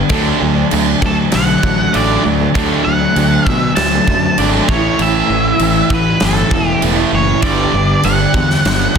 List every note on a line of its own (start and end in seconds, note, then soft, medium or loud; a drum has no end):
0.00 0.11 D4 medium
0.09 0.31 D2 medium
0.09 0.39 D3 medium
0.09 0.40 F#3 loud
0.09 0.41 A3 medium
0.09 0.42 D4 medium
0.09 kick loud
0.09 crash medium
0.40 0.63 D2 medium
0.40 0.70 D3 medium
0.40 0.58 F#3 medium
0.40 0.57 A3 medium
0.40 0.55 D4 medium
0.55 0.71 F#3 medium
0.55 0.72 A3 medium
0.55 0.73 D4 medium
0.70 0.93 D2 medium
0.70 1.00 D3 medium
0.70 0.86 F#3 medium
0.70 0.86 A3 medium
0.70 0.84 D4 medium
0.70 crash medium
0.85 1.00 F#3 medium
0.85 1.01 A3 medium
0.85 1.00 D4 medium
1.01 1.23 D2 medium
1.01 1.29 D3 medium
1.01 1.30 F#3 medium
1.01 1.31 A3 medium
1.01 muted steel-string acoustic guitar stroke soft
1.01 kick medium
1.06 1.14 A4 medium
1.31 1.55 B1 medium
1.31 1.59 D3 medium
1.31 1.60 F#3 medium
1.31 1.61 A3 medium
1.31 1.97 F#5 loud
1.31 snare loud
1.31 crash medium
1.47 1.62 F#3 medium
1.47 1.64 A3 medium
1.47 1.64 D4 medium
1.63 1.85 A1 medium
1.63 1.93 D3 medium
1.63 1.93 F#3 medium
1.63 1.95 A3 medium
1.63 1.95 D4 medium
1.63 kick loud
1.94 2.16 A1 medium
1.94 2.24 D3 medium
1.94 2.11 F#3 medium
1.94 2.11 A3 medium
1.94 2.09 D4 loud
1.94 2.23 D5 medium
1.94 crash medium
2.10 2.25 F#3 medium
2.10 2.27 A3 medium
2.10 2.26 D4 medium
2.26 2.46 D2 medium
2.26 2.53 D3 medium
2.26 2.41 F#3 medium
2.26 2.41 A3 medium
2.26 2.39 D4 medium
2.40 2.54 F#3 medium
2.40 2.56 A3 medium
2.40 2.56 D4 medium
2.54 2.76 D2 medium
2.54 2.84 D3 medium
2.54 2.85 F#3 medium
2.54 2.87 A3 loud
2.54 2.87 D4 loud
2.54 kick loud
2.54 crash medium
2.85 3.07 D2 medium
2.85 3.14 D3 medium
2.85 3.02 F#3 medium
2.85 3.01 A3 medium
2.85 2.99 D4 medium
2.85 3.48 F#5 loud
3.01 3.15 F#3 medium
3.01 3.17 A3 medium
3.01 3.17 D4 medium
3.15 3.37 D2 medium
3.15 3.46 D3 medium
3.15 3.32 F#3 medium
3.15 3.32 A3 loud
3.15 3.30 D4 loud
3.15 crash medium
3.31 3.46 F#3 medium
3.31 3.47 A3 medium
3.31 3.46 D4 medium
3.46 3.68 B2 medium
3.46 3.74 D3 medium
3.46 3.74 F#3 medium
3.46 3.75 A3 medium
3.46 3.72 E5 loud
3.46 kick medium
3.76 3.98 D2 medium
3.76 4.04 D3 medium
3.76 4.04 F#3 medium
3.76 4.05 A3 medium
3.76 4.39 A5 loud
3.76 snare loud
3.76 crash medium
3.93 4.07 F#3 medium
3.93 4.08 A3 medium
3.93 4.09 D4 medium
4.07 4.29 F#2 medium
4.07 4.37 D3 medium
4.07 4.38 F#3 medium
4.07 4.40 A3 medium
4.07 4.40 D4 medium
4.07 kick medium
4.38 4.59 G#1 medium
4.38 4.67 D3 medium
4.38 4.55 F#3 medium
4.38 4.54 A3 loud
4.38 4.52 D4 loud
4.38 4.47 D5 loud
4.38 crash medium
4.53 4.68 F#3 medium
4.53 4.67 A3 medium
4.53 4.67 D4 medium
4.68 4.90 A1 medium
4.68 4.97 A2 medium
4.68 4.98 E3 medium
4.68 4.86 A3 medium
4.68 4.84 C#4 loud
4.68 4.83 E4 loud
4.68 5.01 C#5 medium
4.68 kick loud
4.84 4.98 A3 medium
4.84 4.99 C#4 medium
4.84 4.99 E4 medium
4.98 5.20 A1 medium
4.98 5.58 A2 loud
4.98 5.28 E3 loud
4.98 5.29 A3 loud
4.98 5.30 C#4 loud
4.98 5.31 E4 loud
4.98 5.95 E5 medium
4.98 crash medium
5.29 5.51 A1 medium
5.29 5.57 A2 medium
5.29 5.59 E3 medium
5.29 5.46 A3 medium
5.29 5.44 C#4 medium
5.29 5.43 E4 medium
5.44 5.60 A3 medium
5.44 5.60 C#4 medium
5.44 5.61 E4 medium
5.59 5.81 A1 medium
5.59 6.05 A2 medium
5.59 5.89 E3 loud
5.59 5.77 A3 loud
5.59 5.75 C#4 medium
5.59 5.73 E4 medium
5.59 crash medium
5.74 5.90 A3 medium
5.74 5.90 C#4 medium
5.74 5.90 E4 medium
5.90 6.12 A1 medium
5.90 6.18 A2 medium
5.90 6.18 E3 medium
5.90 6.23 B4 medium
5.90 kick medium
6.20 6.42 G1 loud
6.20 6.49 A2 medium
6.20 6.49 E3 medium
6.20 snare loud
6.20 crash medium
6.25 6.67 A4 medium
6.36 6.50 A3 medium
6.36 6.51 C#4 medium
6.36 6.52 E4 medium
6.50 6.72 E1 medium
6.50 6.80 A2 medium
6.50 6.80 E3 medium
6.50 6.81 A3 medium
6.50 6.81 C#4 medium
6.50 6.82 E4 medium
6.50 kick medium
6.67 6.80 G4 medium
6.81 7.03 E1 medium
6.81 7.27 A2 loud
6.81 7.10 E3 medium
6.81 6.98 A3 loud
6.81 6.97 C#4 loud
6.81 6.95 E4 loud
6.81 crash medium
6.96 7.11 A3 medium
6.96 7.12 C#4 medium
6.96 7.13 E4 medium
7.11 7.33 F#1 loud
7.11 7.40 A2 medium
7.11 7.40 E3 medium
7.11 7.28 A3 medium
7.11 7.27 C#4 medium
7.11 7.25 E4 medium
7.15 7.42 C#5 medium
7.26 7.42 A3 medium
7.26 7.41 C#4 medium
7.26 7.40 E4 medium
7.42 7.64 G1 medium
7.42 8.01 G2 medium
7.42 7.71 D3 medium
7.42 7.72 G3 loud
7.42 7.73 B3 loud
7.42 7.74 D4 loud
7.42 8.05 D5 medium
7.42 kick loud
7.42 crash medium
7.72 7.94 G1 medium
7.72 8.01 G2 medium
7.72 8.02 D3 medium
7.72 7.89 G3 medium
7.72 7.88 B3 medium
7.72 7.86 D4 medium
7.88 8.02 G3 medium
7.88 8.03 B3 medium
7.88 8.03 D4 medium
8.02 8.25 G1 loud
8.02 8.49 G2 medium
8.02 8.34 D3 medium
8.02 8.20 G3 medium
8.02 8.19 B3 loud
8.02 8.17 D4 loud
8.02 8.98 F#5 medium
8.02 crash medium
8.18 8.34 G3 medium
8.18 8.35 B3 medium
8.18 8.34 D4 medium
8.34 8.55 E2 loud
8.34 8.61 G2 medium
8.34 8.62 D3 medium
8.34 muted steel-string acoustic guitar stroke soft
8.34 kick medium
8.50 snare soft
8.65 8.86 G1 loud
8.65 8.92 G2 medium
8.65 8.93 D3 medium
8.65 snare loud
8.65 crash medium
8.80 8.95 G3 medium
8.80 8.96 B3 medium
8.80 8.97 D4 medium
8.95 8.98 G2 medium